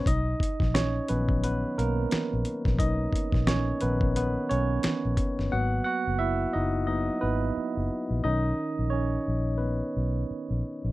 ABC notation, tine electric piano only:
X:1
M:4/4
L:1/8
Q:"Swing 16ths" 1/4=88
K:B
V:1 name="Tine electric piano"
[Dd]2 [Cc] [B,B] [B,B] [A,A]3 | [Dd]2 [Cc] [B,B] [B,B] [Cc]3 | [Ff] [Ff] [Ee] [Dd] [Dd] [B,B]2 z | [Dd]2 [Cc]2 [B,B]3 z |]
V:2 name="Tine electric piano"
z3 [D,F,C]3 z2 | z3 [D,CA]4- [D,CA] | [F,A,B,]3 z [F,A,B,] z3 | [D,CA]8 |]